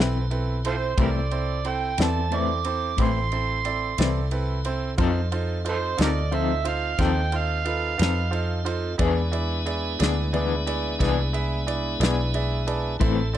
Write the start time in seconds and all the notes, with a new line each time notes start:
Already playing: B1 C4 E4 A4
0.00 E3 B4, snare
0.31 C4 E4 A4 B4, ride
0.65 C4 E4 F4 A4 C5, ride
0.97 C2 A2 E3 C4 E4 A4 C5, kick, ride
1.01 G4 A#4 D5
1.31 C4 E4 A4 C5, ride
1.64 C4 E4 A4 C5 G5, ride
1.98 E2 E3 C4 E4 A4 D5, snare, ride
2.04 A5
2.31 A2 E3 C4 E4 A4 D5, ride
2.37 D6
2.64 C4 E4 A4 C5, ride
2.97 A1 A2 E3 C4 E4 A4 C5, kick, ride
3.03 C6
3.32 C4 E4 A4 C5, ride
3.65 C4 E4 A4 D5, ride
3.98 C2 E3 C4 E4 A4 D5, snare, ride
4.31 C4 E4 A4 B4, ride
4.64 C4 E4 A4 C5, ride
4.98 F2 F3 C4 D#4 F4 A4 C5, kick, ride
5.32 D#4 F4 A4 C5, ride
5.65 D#4 F4 A4 C5, ride
5.69 F4 A4 C5
5.97 D2 D#4 F4 A4 D#5, snare, ride
6.01 C4 G4 A#4 D5
6.31 F3 C4 D#4 F4 A4 C5 E5, ride
6.64 D#4 F4 A4 C5 F5, ride
6.98 D#2 F3 C4 D#4 F4 A4 C5 G5, kick, snare, ride
7.32 D#4 F4 A4 C5, ride
7.37 F5
7.65 D#4 F4 A4 B4, ride
7.97 F2 D#4 F4 A4 B4, ride
8.02 C4, snare
8.31 D#4 F4 A4 C5, ride
8.64 D#4 F4 A4 C5, ride
8.98 E2 E3 G#3 B3 D4 E4 G#4 B4 D5, kick, ride
9.31 E4 G#4 B4 D5, ride
9.66 E4 G#4 B4 D5, ride
9.99 D2 B3 D4 E4 G#4 B4 D5, snare, ride
10.33 E3 B3 D4 E4 G#4 B4 D5, ride
10.66 E4 G#4 B4 D5, ride
10.99 C2 E3 B3 D4 E4 G#4 B4 D5, kick, ride
11.03 snare
11.33 E4 G#4 B4 E5, ride
11.67 E4 G#4 B4 D5, ride
12.00 B1 B3 D4 E4 G#4 B4 D5, snare, ride
12.34 E4 G#4 B4 D5 E5, ride
12.67 E4 G#4 B4 D5 A5, ride
12.99 A1 A2 E3 A3 C4 E4 A4 C5 E5, kick, ride
13.33 E4 A4 C5 D5, ride